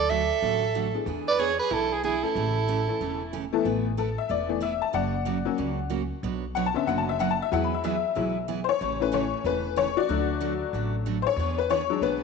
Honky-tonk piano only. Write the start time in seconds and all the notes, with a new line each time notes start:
0.94 G#3 B3 D4 E4 G#4
2.23 E3 A3 C#4 E4 A4
2.88 E3 A3 C#4 E4 A4
3.53 E3 A3 B3 E4 A4
3.65 E3 A3 B3
3.98 A4
4.18 E5
4.31 D5
4.49 E3 A3 B3
4.63 E5
4.82 A5
4.94 D5 F#5
5.45 F#3 A#3 C#4
6.55 F#5
6.66 A5
6.74 D3 B3 C#4 E5
6.87 F#5
6.98 A5
7.09 E5
7.20 F#5
7.31 A5
7.42 E5
7.51 F#3 G#3 E4 F#5
7.64 B5
7.74 E5
7.85 E5
8.16 F#3 G#3 E4
8.64 C5
8.69 C#5
9.00 E3 A3 C#4 B4
9.14 C#5
9.46 B4
9.77 C#5
9.97 F#4 D5
10.09 F#3 A3 D4
11.22 C5
11.27 C#5
11.58 B4
11.70 C#5
11.90 F#3 G#3 D4
12.03 B4